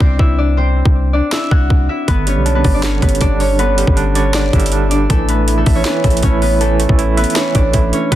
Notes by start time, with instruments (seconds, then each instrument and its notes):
Already playing: harp D4 E4 D5 E5
0.00 808-style bass C2, harp C4 C5, kick
0.19 808-style bass C2, harp E4 E5, kick
0.38 harp D4 D5
0.57 harp C4 C5
0.85 808-style bass C2, kick
1.13 harp D4 D5
1.32 harp E4 E5, snare
1.51 808-style bass C2, harp F#4 F#5, kick
1.70 808-style bass C2, kick
1.89 harp E4 E5
2.08 808-style bass G1, tine electric piano D3, harp B3 B4, kick, closed hi-hat
2.27 tine electric piano G3, harp C#4 C#5, closed hi-hat
2.36 808-style bass B1
2.46 tine electric piano D4, closed hi-hat
2.55 harp B3 B4
2.64 808-style bass G1, tine electric piano D5, kick, open hi-hat
2.74 harp D4 D5
2.83 tine electric piano D3, harp C#4 C#5, snare, closed hi-hat
3.02 808-style bass G1, tine electric piano G3, harp B3 B4, kick, closed hi-hat
3.09 closed hi-hat
3.15 closed hi-hat
3.21 808-style bass G1, tine electric piano D4, harp D4 D5, kick, closed hi-hat
3.40 harp C#4 C#5, open hi-hat
3.59 tine electric piano D3, harp B3 B4, closed hi-hat
3.78 tine electric piano G3, closed hi-hat
3.87 808-style bass G1, kick
3.97 tine electric piano D4, closed hi-hat
4.15 harp C#4 C#5, tine electric piano D5, closed hi-hat
4.34 tine electric piano D3, harp D4 D5, snare, closed hi-hat
4.53 808-style bass G1, tine electric piano G3, harp E4 E5, kick, closed hi-hat
4.60 closed hi-hat
4.66 closed hi-hat
4.72 tine electric piano D4, closed hi-hat
4.91 harp D4 D5, closed hi-hat
5.10 808-style bass A1, tine electric piano E3, harp A3 A4, kick, closed hi-hat
5.29 tine electric piano A3, harp B3 B4, closed hi-hat
5.48 tine electric piano E4, closed hi-hat
5.58 harp A3 A4
5.66 808-style bass A1, tine electric piano E5, kick, open hi-hat
5.75 harp C#4 C#5
5.85 tine electric piano E3, harp B3 B4, snare, closed hi-hat
6.04 808-style bass A1, tine electric piano A3, harp A3 A4, kick, closed hi-hat
6.10 closed hi-hat
6.17 closed hi-hat
6.23 808-style bass A1, harp C#4 C#5, tine electric piano E4, kick, closed hi-hat
6.42 harp B3 B4, open hi-hat
6.60 tine electric piano E3, harp A3 A4, closed hi-hat
6.80 tine electric piano A3, closed hi-hat
6.89 808-style bass A1, kick
6.99 tine electric piano E4, closed hi-hat
7.17 harp B3 B4, tine electric piano E5, closed hi-hat
7.24 closed hi-hat
7.30 closed hi-hat
7.36 tine electric piano E3, harp C#4 C#5, snare, closed hi-hat
7.55 808-style bass A1, tine electric piano A3, harp D4 D5, kick, closed hi-hat
7.73 808-style bass A1, tine electric piano E4, kick, closed hi-hat
7.93 harp C#4 C#5, closed hi-hat
8.12 808-style bass B1, tine electric piano B2, harp B4, kick, closed hi-hat